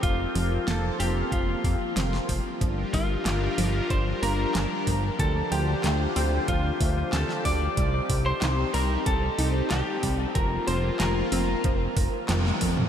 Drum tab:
HH |x-o-x-o-x-o-x-o-|x-o-x-o-x-o-x-o-|x-o-x-o-x-o-x-o-|x-o-x-o-x-o-x-o-|
CP |----------------|----x-------x---|----x-------x---|----x-------x---|
SD |----o-------oo--|----o-------o---|----o-------oo--|----o-------o---|
T1 |----------------|----------------|----------------|----------------|
T2 |----------------|----------------|----------------|----------------|
BD |o-------o-o---o-|o-o-----o-----o-|o-------o-o---o-|o-o-----o-----o-|

HH |x-o-x-o-x-o-x-o-|
CP |----x-------x---|
SD |----o-------oo--|
T1 |------------oo--|
T2 |---------------o|
BD |o-------o-o---o-|